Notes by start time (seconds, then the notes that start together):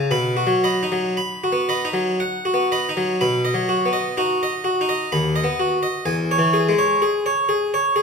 Already playing: C#3
0.11 B2 B5
0.37 F#4
0.47 F#3
0.64 D#5 B5
0.83 D#4
0.92 F#3
1.17 B5
1.44 F#4
1.52 B3
1.69 D#5 B5
1.85 D#4
1.93 F#3
2.20 F#5
2.45 F#4
2.54 B3
2.72 D#5 B5
2.89 D#4
2.97 F#3
3.21 B2 B5
3.45 D#5
3.54 F#3
3.69 F#4
3.86 B3
3.93 D#5
4.17 D#4 F#4
4.43 D#5
4.64 F#4
4.81 D#4
4.89 D#5
5.12 D#2 B5
5.36 D#5
5.44 B3
5.60 F#4
5.83 D#5
6.06 E2 G#5
6.31 C#5
6.39 E3
6.53 G#4
6.69 G#3
6.79 C#5
7.02 G#4
7.26 C#5
7.49 G#4
7.74 C#5
7.96 G#4